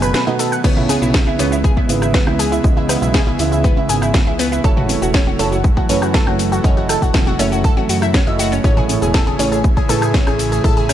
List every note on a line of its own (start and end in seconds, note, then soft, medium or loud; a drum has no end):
0.00 0.14 F#1 medium
0.00 0.24 B2 medium
0.00 0.60 D#3 medium
0.00 0.60 F#3 medium
0.00 0.60 A3 medium
0.00 0.24 B3 medium
0.00 4.60 B3 medium
0.00 0.24 F#4 medium
0.00 0.24 A4 medium
0.00 0.07 B4 loud
0.00 0.24 G#5 medium
0.00 0.62 G#5 medium
0.00 cross-stick medium
0.00 shaker soft
0.14 0.19 B4 medium
0.14 snare loud
0.14 shaker soft
0.27 0.51 B2 medium
0.27 0.51 B3 medium
0.27 0.32 D#4 medium
0.27 0.51 F#4 medium
0.27 0.51 A4 medium
0.27 0.51 F#5 medium
0.39 0.44 A4 medium
0.39 open hi-hat loud
0.39 shaker medium
0.52 0.60 F#5 medium
0.52 shaker soft
0.64 0.98 C#2 loud
0.64 1.36 C#3 loud
0.64 8.60 C#3 medium
0.64 10.93 E3 medium
0.64 4.60 G#3 medium
0.64 1.36 B3 medium
0.64 0.76 B3 loud
0.64 1.36 E4 medium
0.64 6.60 E4 medium
0.64 1.36 G#4 medium
0.64 1.36 C#5 loud
0.64 kick loud
0.64 crash medium
0.64 shaker soft
0.77 0.89 E4 medium
0.77 mid tom medium
0.89 0.97 G#4 loud
0.89 open hi-hat loud
0.89 high conga medium
0.89 shaker medium
1.02 1.35 B1 medium
1.02 1.10 E4 medium
1.02 shaker soft
1.14 kick loud
1.14 snare loud
1.14 shaker soft
1.27 1.35 E4 medium
1.27 high conga medium
1.39 1.73 C#2 loud
1.39 1.54 C#3 medium
1.39 1.54 B3 medium
1.39 1.51 B3 loud
1.39 1.54 E4 medium
1.39 1.54 G#4 medium
1.39 1.54 C#5 medium
1.39 open hi-hat loud
1.39 shaker medium
1.52 1.64 E4 medium
1.52 shaker soft
1.64 1.72 G#4 loud
1.64 kick loud
1.64 shaker soft
1.77 1.85 E4 medium
1.77 kick medium
1.89 2.23 G#1 medium
1.89 2.61 C#3 medium
1.89 2.61 B3 medium
1.89 2.61 E4 medium
1.89 2.61 G#4 medium
1.89 2.61 B4 medium
1.89 open hi-hat loud
1.89 shaker medium
2.02 2.10 E4 medium
2.02 cross-stick medium
2.02 shaker soft
2.14 2.26 B3 loud
2.14 kick loud
2.14 snare loud
2.14 shaker soft
2.27 2.60 C#2 medium
2.27 2.39 E4 medium
2.27 cross-stick medium
2.27 high conga medium
2.39 2.47 G#4 loud
2.39 open hi-hat loud
2.39 shaker medium
2.52 2.60 E4 medium
2.52 shaker medium
2.64 2.98 C#2 loud
2.64 3.36 C#3 medium
2.64 3.36 B3 medium
2.64 3.36 E4 medium
2.64 3.36 G#4 medium
2.64 3.36 D#5 medium
2.64 kick loud
2.64 shaker soft
2.77 2.85 E4 medium
2.89 3.01 B3 loud
2.89 cross-stick medium
2.89 open hi-hat loud
2.89 shaker medium
3.02 3.35 B1 medium
3.02 3.14 E4 medium
3.02 shaker soft
3.14 3.22 G#4 loud
3.14 kick loud
3.14 snare loud
3.14 shaker soft
3.27 3.35 E4 medium
3.39 3.73 C#2 loud
3.39 4.61 C#3 medium
3.39 4.61 B3 medium
3.39 4.61 E4 medium
3.39 4.61 G#4 medium
3.39 4.61 E5 medium
3.39 open hi-hat loud
3.39 shaker medium
3.52 3.60 E4 medium
3.52 shaker soft
3.64 3.76 B3 loud
3.64 kick loud
3.64 shaker soft
3.77 3.89 E4 medium
3.77 high conga medium
3.89 4.23 G#1 medium
3.89 3.97 G#4 loud
3.89 open hi-hat loud
3.89 shaker medium
4.02 4.10 E4 medium
4.02 cross-stick medium
4.02 shaker soft
4.14 kick loud
4.14 snare loud
4.14 shaker soft
4.27 4.60 C#2 medium
4.27 4.35 E4 medium
4.39 4.51 B3 loud
4.39 open hi-hat loud
4.39 shaker medium
4.52 4.64 E4 medium
4.52 shaker soft
4.64 4.98 F#1 loud
4.64 8.60 F#3 medium
4.64 5.36 A3 loud
4.64 10.60 A3 medium
4.64 5.36 E4 medium
4.64 5.36 F#4 medium
4.64 4.72 A4 loud
4.64 5.36 C#5 loud
4.64 kick loud
4.64 shaker soft
4.77 4.85 F#4 medium
4.77 mid tom medium
4.89 open hi-hat loud
4.89 high conga medium
4.89 shaker medium
5.02 5.35 E1 medium
5.02 5.10 F#4 medium
5.02 shaker soft
5.14 5.26 C#4 loud
5.14 kick loud
5.14 snare loud
5.14 shaker soft
5.27 5.39 F#4 medium
5.27 high conga medium
5.39 5.73 F#1 loud
5.39 5.54 A3 medium
5.39 5.54 E4 medium
5.39 5.54 F#4 medium
5.39 5.47 A4 loud
5.39 5.54 C#5 medium
5.39 open hi-hat loud
5.39 shaker medium
5.52 5.60 F#4 medium
5.52 shaker soft
5.64 kick loud
5.64 shaker soft
5.77 5.85 F#4 medium
5.77 kick medium
5.89 6.23 F#2 medium
5.89 6.61 A3 medium
5.89 6.01 C#4 loud
5.89 6.61 E4 medium
5.89 6.61 F#4 medium
5.89 6.61 B4 medium
5.89 open hi-hat loud
5.89 shaker medium
6.02 6.14 F#4 medium
6.02 cross-stick medium
6.02 shaker soft
6.14 6.22 A4 loud
6.14 kick loud
6.14 snare loud
6.14 shaker soft
6.27 6.60 F#1 medium
6.27 6.35 F#4 medium
6.27 cross-stick medium
6.27 high conga medium
6.39 open hi-hat loud
6.39 shaker medium
6.52 6.60 F#4 medium
6.52 shaker soft
6.64 7.36 A3 medium
6.64 6.76 C#4 loud
6.64 7.36 E4 medium
6.64 7.36 F#4 medium
6.64 7.36 D#5 medium
6.64 kick loud
6.64 shaker soft
6.77 6.89 F#4 medium
6.89 6.97 A4 loud
6.89 cross-stick medium
6.89 open hi-hat loud
6.89 shaker medium
7.02 7.35 E1 medium
7.02 7.10 F#4 medium
7.02 kick medium
7.02 shaker soft
7.14 kick loud
7.14 snare loud
7.14 shaker soft
7.27 7.35 F#4 medium
7.27 high conga medium
7.39 7.73 F#1 loud
7.39 8.24 A3 medium
7.39 7.51 C#4 loud
7.39 8.24 E4 medium
7.39 8.24 F#4 medium
7.39 8.24 E5 medium
7.39 open hi-hat loud
7.39 shaker medium
7.52 7.64 F#4 medium
7.52 shaker soft
7.64 7.72 A4 loud
7.64 kick loud
7.64 shaker soft
7.77 7.85 F#4 medium
7.77 high conga medium
7.89 8.23 F#2 medium
7.89 7.94 F#4 medium
7.89 open hi-hat loud
7.89 shaker medium
8.02 8.14 E4 medium
8.02 cross-stick medium
8.02 shaker soft
8.14 8.22 C#4 loud
8.14 kick loud
8.14 snare loud
8.14 shaker soft
8.27 8.60 F#1 medium
8.27 8.51 A3 medium
8.27 8.51 E4 medium
8.27 8.51 F#4 medium
8.27 8.51 D#5 medium
8.27 8.39 E5 medium
8.39 8.44 F#4 loud
8.39 open hi-hat loud
8.39 shaker medium
8.52 8.63 C#4 medium
8.52 shaker soft
8.64 8.98 A1 loud
8.64 9.36 A2 loud
8.64 10.93 C#3 medium
8.64 9.36 A3 medium
8.64 8.76 C#4 loud
8.64 10.93 E4 medium
8.64 9.36 E4 medium
8.64 9.36 G#4 medium
8.64 10.93 G#4 medium
8.64 9.36 C#5 loud
8.64 kick loud
8.64 shaker soft
8.77 8.89 G#4 medium
8.77 mid tom medium
8.89 open hi-hat loud
8.89 high conga medium
8.89 shaker medium
9.02 9.35 E1 medium
9.02 9.10 G#4 medium
9.02 shaker soft
9.14 9.22 A4 loud
9.14 kick loud
9.14 snare loud
9.14 shaker soft
9.27 9.35 G#4 medium
9.27 high conga medium
9.39 9.73 A1 loud
9.39 9.54 A2 medium
9.39 9.54 A3 medium
9.39 9.51 C#4 loud
9.39 9.54 E4 medium
9.39 9.54 G#4 medium
9.39 9.54 C#5 medium
9.39 open hi-hat loud
9.39 shaker medium
9.52 9.64 G#4 medium
9.52 shaker soft
9.64 kick loud
9.64 shaker soft
9.77 9.85 G#4 medium
9.77 kick medium
9.89 10.61 A2 medium
9.89 10.23 A2 medium
9.89 10.61 A3 medium
9.89 10.61 E4 medium
9.89 10.61 G#4 medium
9.89 9.97 A4 loud
9.89 10.61 B4 medium
9.89 open hi-hat loud
9.89 shaker medium
10.02 10.10 G#4 medium
10.02 cross-stick medium
10.02 shaker soft
10.14 10.26 C#4 loud
10.14 kick loud
10.14 snare loud
10.14 shaker soft
10.27 10.60 A1 medium
10.27 10.39 G#4 medium
10.27 cross-stick medium
10.27 high conga medium
10.39 open hi-hat loud
10.39 shaker medium
10.52 10.60 G#4 medium
10.52 shaker soft
10.64 10.93 A1 loud
10.64 10.93 A2 medium
10.64 10.93 A3 medium
10.64 10.93 B3 medium
10.64 10.93 E4 medium
10.64 10.93 G#4 medium
10.64 10.72 A4 loud
10.64 10.93 E5 medium
10.64 kick loud
10.64 shaker soft
10.77 10.85 G#4 medium
10.89 10.93 C#4 loud
10.89 cross-stick medium
10.89 open hi-hat loud
10.89 shaker medium